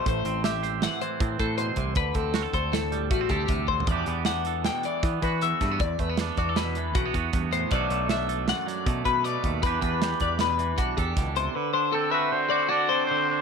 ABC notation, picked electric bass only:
X:1
M:5/4
L:1/8
Q:1/4=157
K:Em
V:1 name="Picked electric bass" clef=bass
A,,, A,,,4 z A,, A,,2 C,, | D,, D,,2 D,,3 A,,, D,, D,,2 | E,, E,,4 z E, E,2 G,, | E,, E,,2 E,,3 B,,, E,, E,,2 |
B,,, B,,,4 z B,, B,,2 ^D,, | E,, E,,2 E,,3 B,,, E,, ^C,,2 | z8 z2 |]